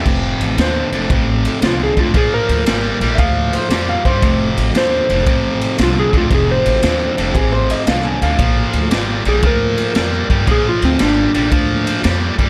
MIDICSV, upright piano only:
0, 0, Header, 1, 2, 480
1, 0, Start_track
1, 0, Tempo, 520833
1, 54, Time_signature, 4, 2, 24, 8
1, 11515, End_track
2, 0, Start_track
2, 0, Title_t, "Upright piano"
2, 0, Program_c, 0, 0
2, 2899, Note_on_c, 0, 76, 75
2, 2937, Note_off_c, 0, 76, 0
2, 2937, Note_on_c, 0, 77, 109
2, 3246, Note_off_c, 0, 77, 0
2, 3258, Note_on_c, 0, 72, 77
2, 3567, Note_off_c, 0, 72, 0
2, 3585, Note_on_c, 0, 77, 81
2, 3735, Note_off_c, 0, 77, 0
2, 3735, Note_on_c, 0, 72, 100
2, 4200, Note_off_c, 0, 72, 0
2, 6743, Note_on_c, 0, 67, 58
2, 6780, Note_off_c, 0, 67, 0
2, 6787, Note_on_c, 0, 68, 86
2, 6933, Note_on_c, 0, 72, 96
2, 6936, Note_off_c, 0, 68, 0
2, 7089, Note_off_c, 0, 72, 0
2, 7103, Note_on_c, 0, 75, 82
2, 7250, Note_on_c, 0, 77, 72
2, 7254, Note_off_c, 0, 75, 0
2, 7407, Note_off_c, 0, 77, 0
2, 7420, Note_on_c, 0, 80, 76
2, 7572, Note_off_c, 0, 80, 0
2, 7582, Note_on_c, 0, 77, 84
2, 8458, Note_off_c, 0, 77, 0
2, 11515, End_track
0, 0, End_of_file